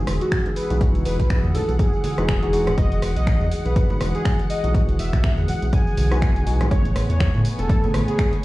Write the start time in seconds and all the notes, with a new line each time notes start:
Already playing: E3 G#3 D#4 F#4 G#4 F#5 D#6 E6
0.07 E1, cross-stick, open hi-hat, tambourine, high bongo, high conga
0.21 F#4, closed hi-hat, tambourine
0.32 finger snap, kick, closed hi-hat, tambourine
0.46 closed hi-hat, tambourine, high bongo
0.52 F#5
0.56 B4, open hi-hat, tambourine
0.70 B1 E3 G#3 D#4 F#4, closed hi-hat, tambourine, high bongo
0.80 E3 G#3 D#4 F#4, kick, closed hi-hat, tambourine
0.95 closed hi-hat, tambourine
1.06 E1 B4, open hi-hat, tambourine
1.20 B1, kick, closed hi-hat, tambourine
1.30 finger snap, kick, closed hi-hat, tambourine, low conga
1.44 E2, tambourine, high conga
1.55 A4, open hi-hat, tambourine, low conga
1.68 B1, closed hi-hat, tambourine, high bongo
1.79 G#4, kick, closed hi-hat, tambourine
1.94 tambourine
2.04 open hi-hat, tambourine, high conga
2.18 E1 E3 G#3 D#4 F#4, cross-stick, closed hi-hat, tambourine
2.29 finger snap, kick, closed hi-hat, tambourine
2.42 E3 G#3 D#4 F#4, closed hi-hat, tambourine
2.53 E3 G#3 D#4 F#4, open hi-hat, tambourine
2.67 cross-stick, closed hi-hat, tambourine, high bongo, low conga
2.77 E1 E3 G#3 D#4 F#4 D#5 F#6, kick, closed hi-hat, tambourine
2.92 closed hi-hat, tambourine
3.02 E1, cross-stick, open hi-hat, tambourine
3.16 B1 D#5, closed hi-hat, tambourine
3.27 finger snap, kick, closed hi-hat, tambourine, low conga
3.41 E2, tambourine, high conga
3.51 open hi-hat, tambourine
3.65 B1 B4, closed hi-hat, tambourine, high bongo
3.76 kick, closed hi-hat, tambourine
3.89 E3 G#3 D#4 F#4, tambourine, low conga
4.01 E1, cross-stick, open hi-hat, tambourine, high bongo, high conga
4.15 G#4, closed hi-hat, tambourine
4.25 finger snap, kick, closed hi-hat, tambourine
4.39 closed hi-hat, tambourine, high bongo
4.50 D#5, open hi-hat, tambourine
4.64 B1 E3 G#3 D#4 F#4, closed hi-hat, tambourine, high bongo
4.74 D#3 E3 G#3 F#4, kick, closed hi-hat, tambourine
4.89 closed hi-hat, tambourine
4.99 E1 E5, open hi-hat, tambourine
5.13 B1, finger snap, kick, closed hi-hat, tambourine
5.24 finger snap, kick, closed hi-hat, tambourine, low conga
5.37 E2, tambourine, high conga
5.48 F#5, open hi-hat, tambourine, low conga
5.62 B1, closed hi-hat, tambourine, high bongo
5.73 G#5, kick, closed hi-hat, tambourine
5.87 tambourine
5.97 B1, open hi-hat, tambourine, high conga
6.11 E3 G#3 D#4 F#4, cross-stick, closed hi-hat, tambourine
6.22 finger snap, kick, closed hi-hat, tambourine
6.36 closed hi-hat, tambourine
6.46 B1 E3 G#3 D#4 F#4, open hi-hat, tambourine
6.61 cross-stick, closed hi-hat, tambourine, high bongo, low conga
6.70 A1 C#3 A3 B3 G#4 C#5 G#5 B5 C#6, kick, closed hi-hat, tambourine
6.85 closed hi-hat, tambourine
6.95 A1 A3 G#5, cross-stick, open hi-hat, tambourine
7.10 E2 C#5, closed hi-hat, tambourine
7.20 finger snap, kick, closed hi-hat, tambourine, low conga
7.28 C#5
7.34 A2, tambourine, high conga
7.45 open hi-hat, tambourine
7.59 E1 A4, closed hi-hat, tambourine, high bongo
7.69 kick, closed hi-hat, tambourine
7.83 C#3 A3 B3 G#4, tambourine, low conga
7.94 A1, cross-stick, open hi-hat, tambourine, high bongo, high conga
8.08 G#4, closed hi-hat, tambourine
8.19 finger snap, kick, closed hi-hat, tambourine
8.32 closed hi-hat, tambourine, high bongo